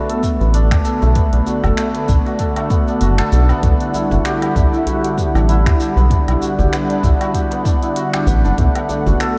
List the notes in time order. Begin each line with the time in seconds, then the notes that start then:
Already playing: D3 A3 B3 D4 E4 F#4 F#5
0.09 A4, closed hi-hat, shaker
0.23 A3, kick, djembe slap, shaker
0.41 A1 B3, shaker
0.54 D4, closed hi-hat, shaker
0.71 D2 D4, finger snap, kick, closed hi-hat, low woodblock, shaker
0.85 A4, djembe slap, shaker
1.02 B1 A3, djembe tone, djembe bass, shaker
1.15 B3, kick, closed hi-hat, djembe tone, shaker
1.33 B1 D4, closed hi-hat, shaker
1.47 F#4, djembe tone, shaker
1.63 F#1 A4, djembe slap, djembe bass, low woodblock, shaker
1.77 A3, finger snap, closed hi-hat, shaker
1.95 B3, closed hi-hat, shaker
2.08 B1 D4, kick, shaker
2.26 F#4, shaker
2.39 A4, kick, closed hi-hat, shaker
2.56 A3, closed hi-hat, djembe slap, low woodblock, shaker
2.70 B3, kick, djembe tone, shaker
2.88 D4, shaker
3.01 F#1 F#4, closed hi-hat, shaker
3.18 A4, finger snap, closed hi-hat, djembe slap, shaker
3.32 B1 A3, djembe bass, shaker
3.49 B3, low woodblock, shaker
3.63 B1 G3 B3 E4, kick, closed hi-hat, shaker
3.80 D4, closed hi-hat, shaker
3.94 E4, djembe tone, shaker
4.11 F#1 F#4, djembe slap, djembe bass, shaker
4.25 G4, finger snap, closed hi-hat, shaker
4.42 B3, closed hi-hat, low woodblock, shaker
4.56 B1 D4, kick, shaker
4.73 E4, shaker
4.86 F#4, closed hi-hat, djembe bass, shaker
5.04 G4, closed hi-hat, shaker
5.18 B3, kick, djembe slap, shaker
5.35 A1 D4, low woodblock, shaker
5.49 E4, closed hi-hat, shaker
5.66 D2 E4, finger snap, kick, closed hi-hat, shaker
5.80 G4, djembe slap, shaker
5.96 B1 B3, djembe tone, djembe bass, shaker
6.11 D4, kick, closed hi-hat, djembe tone, shaker
6.28 B1 E4, closed hi-hat, low woodblock, shaker
6.42 F#4, djembe tone, shaker
6.59 F#1 G4, djembe slap, djembe bass, shaker
6.72 B3, finger snap, closed hi-hat, shaker
6.90 D4, closed hi-hat, shaker
7.03 B1 E4, kick, shaker
7.21 F#4, closed hi-hat, low woodblock, shaker
7.34 G4, kick, closed hi-hat, shaker
7.51 B3, closed hi-hat, djembe slap, shaker
7.65 D4, kick, djembe tone, shaker
7.83 E4, closed hi-hat, shaker
7.96 F#4, closed hi-hat, shaker
8.14 G4, finger snap, closed hi-hat, djembe slap, low woodblock, shaker
8.27 A1 B3, djembe bass, shaker
8.44 F#1 D4, shaker
8.58 B1 D3 A3 B3, kick, closed hi-hat, shaker
8.75 B3, closed hi-hat, low woodblock, shaker
8.89 D4, djembe tone, shaker
9.06 F#1 F#4, djembe slap, djembe bass, shaker
9.20 A4, finger snap, closed hi-hat, shaker